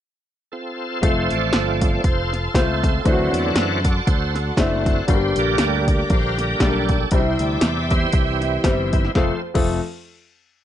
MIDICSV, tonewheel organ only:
0, 0, Header, 1, 2, 480
1, 0, Start_track
1, 0, Key_signature, -1, "major"
1, 0, Tempo, 507614
1, 976, Time_signature, 4, 2, 24, 8
1, 10062, End_track
2, 0, Start_track
2, 0, Title_t, "Tonewheel organ"
2, 0, Program_c, 0, 16
2, 489, Note_on_c, 0, 69, 85
2, 498, Note_on_c, 0, 60, 64
2, 498, Note_on_c, 0, 65, 63
2, 937, Note_off_c, 0, 69, 0
2, 968, Note_off_c, 0, 65, 0
2, 975, Note_on_c, 0, 72, 93
2, 976, Note_off_c, 0, 60, 0
2, 979, Note_on_c, 0, 65, 69
2, 980, Note_on_c, 0, 57, 47
2, 981, Note_on_c, 0, 53, 47
2, 986, Note_on_c, 0, 69, 65
2, 987, Note_on_c, 0, 60, 57
2, 1222, Note_off_c, 0, 72, 0
2, 1239, Note_off_c, 0, 65, 0
2, 1242, Note_off_c, 0, 69, 0
2, 1251, Note_on_c, 0, 65, 71
2, 1251, Note_on_c, 0, 74, 87
2, 1253, Note_on_c, 0, 69, 66
2, 1704, Note_off_c, 0, 53, 0
2, 1709, Note_off_c, 0, 57, 0
2, 1710, Note_off_c, 0, 74, 0
2, 1715, Note_off_c, 0, 60, 0
2, 1715, Note_on_c, 0, 53, 43
2, 1720, Note_on_c, 0, 57, 40
2, 1721, Note_on_c, 0, 74, 84
2, 1726, Note_on_c, 0, 60, 48
2, 1907, Note_off_c, 0, 53, 0
2, 1909, Note_off_c, 0, 57, 0
2, 1913, Note_off_c, 0, 60, 0
2, 1923, Note_off_c, 0, 65, 0
2, 1930, Note_off_c, 0, 69, 0
2, 1932, Note_on_c, 0, 72, 92
2, 1934, Note_on_c, 0, 65, 62
2, 1938, Note_off_c, 0, 74, 0
2, 1942, Note_on_c, 0, 69, 64
2, 2186, Note_off_c, 0, 69, 0
2, 2198, Note_on_c, 0, 69, 98
2, 2204, Note_off_c, 0, 72, 0
2, 2402, Note_off_c, 0, 69, 0
2, 2410, Note_off_c, 0, 65, 0
2, 2413, Note_on_c, 0, 69, 89
2, 2416, Note_on_c, 0, 60, 56
2, 2422, Note_on_c, 0, 65, 66
2, 2856, Note_off_c, 0, 60, 0
2, 2859, Note_off_c, 0, 65, 0
2, 2892, Note_off_c, 0, 69, 0
2, 2892, Note_on_c, 0, 52, 49
2, 2896, Note_on_c, 0, 54, 49
2, 2901, Note_on_c, 0, 72, 88
2, 2903, Note_on_c, 0, 69, 63
2, 2906, Note_on_c, 0, 60, 58
2, 2907, Note_on_c, 0, 66, 67
2, 3141, Note_off_c, 0, 72, 0
2, 3145, Note_off_c, 0, 69, 0
2, 3150, Note_off_c, 0, 66, 0
2, 3153, Note_on_c, 0, 74, 102
2, 3157, Note_on_c, 0, 69, 62
2, 3161, Note_on_c, 0, 66, 68
2, 3596, Note_off_c, 0, 52, 0
2, 3597, Note_off_c, 0, 74, 0
2, 3598, Note_off_c, 0, 54, 0
2, 3603, Note_off_c, 0, 60, 0
2, 3642, Note_on_c, 0, 74, 89
2, 3834, Note_off_c, 0, 66, 0
2, 3839, Note_off_c, 0, 69, 0
2, 3846, Note_on_c, 0, 66, 65
2, 3851, Note_on_c, 0, 69, 63
2, 3851, Note_on_c, 0, 72, 85
2, 3854, Note_off_c, 0, 74, 0
2, 4104, Note_off_c, 0, 69, 0
2, 4116, Note_on_c, 0, 69, 90
2, 4121, Note_off_c, 0, 72, 0
2, 4331, Note_off_c, 0, 66, 0
2, 4331, Note_off_c, 0, 69, 0
2, 4343, Note_on_c, 0, 66, 67
2, 4347, Note_on_c, 0, 60, 63
2, 4347, Note_on_c, 0, 69, 78
2, 4778, Note_off_c, 0, 66, 0
2, 4781, Note_off_c, 0, 60, 0
2, 4818, Note_on_c, 0, 72, 92
2, 4823, Note_on_c, 0, 67, 66
2, 4827, Note_off_c, 0, 69, 0
2, 5075, Note_off_c, 0, 67, 0
2, 5079, Note_on_c, 0, 50, 48
2, 5084, Note_off_c, 0, 72, 0
2, 5086, Note_on_c, 0, 67, 59
2, 5089, Note_on_c, 0, 55, 46
2, 5094, Note_on_c, 0, 58, 52
2, 5095, Note_on_c, 0, 70, 64
2, 5097, Note_on_c, 0, 74, 105
2, 5530, Note_off_c, 0, 74, 0
2, 5571, Note_on_c, 0, 74, 83
2, 5767, Note_off_c, 0, 67, 0
2, 5778, Note_on_c, 0, 67, 61
2, 5779, Note_off_c, 0, 74, 0
2, 5788, Note_on_c, 0, 72, 82
2, 6005, Note_off_c, 0, 70, 0
2, 6025, Note_off_c, 0, 72, 0
2, 6064, Note_on_c, 0, 70, 89
2, 6250, Note_off_c, 0, 55, 0
2, 6251, Note_off_c, 0, 50, 0
2, 6253, Note_off_c, 0, 58, 0
2, 6261, Note_on_c, 0, 55, 43
2, 6262, Note_on_c, 0, 50, 47
2, 6264, Note_on_c, 0, 58, 50
2, 6266, Note_off_c, 0, 70, 0
2, 6270, Note_on_c, 0, 62, 55
2, 6282, Note_on_c, 0, 69, 87
2, 6494, Note_off_c, 0, 55, 0
2, 6495, Note_off_c, 0, 50, 0
2, 6496, Note_off_c, 0, 58, 0
2, 6695, Note_off_c, 0, 67, 0
2, 6705, Note_off_c, 0, 62, 0
2, 6712, Note_off_c, 0, 69, 0
2, 6740, Note_on_c, 0, 64, 63
2, 6742, Note_on_c, 0, 67, 62
2, 6755, Note_on_c, 0, 72, 86
2, 6992, Note_off_c, 0, 67, 0
2, 7003, Note_on_c, 0, 67, 61
2, 7011, Note_on_c, 0, 74, 90
2, 7015, Note_off_c, 0, 72, 0
2, 7484, Note_on_c, 0, 55, 42
2, 7485, Note_on_c, 0, 52, 47
2, 7489, Note_on_c, 0, 60, 55
2, 7498, Note_off_c, 0, 74, 0
2, 7499, Note_on_c, 0, 72, 82
2, 7658, Note_off_c, 0, 64, 0
2, 7701, Note_off_c, 0, 60, 0
2, 7707, Note_off_c, 0, 72, 0
2, 7707, Note_on_c, 0, 64, 45
2, 7711, Note_off_c, 0, 67, 0
2, 7712, Note_on_c, 0, 60, 43
2, 7722, Note_on_c, 0, 67, 64
2, 8418, Note_off_c, 0, 67, 0
2, 8620, Note_off_c, 0, 52, 0
2, 8620, Note_off_c, 0, 55, 0
2, 8625, Note_off_c, 0, 64, 0
2, 8627, Note_off_c, 0, 60, 0
2, 8654, Note_on_c, 0, 57, 73
2, 8660, Note_on_c, 0, 72, 77
2, 8662, Note_on_c, 0, 60, 65
2, 8662, Note_on_c, 0, 65, 73
2, 8903, Note_off_c, 0, 57, 0
2, 8907, Note_off_c, 0, 60, 0
2, 8907, Note_off_c, 0, 65, 0
2, 8907, Note_off_c, 0, 72, 0
2, 10062, End_track
0, 0, End_of_file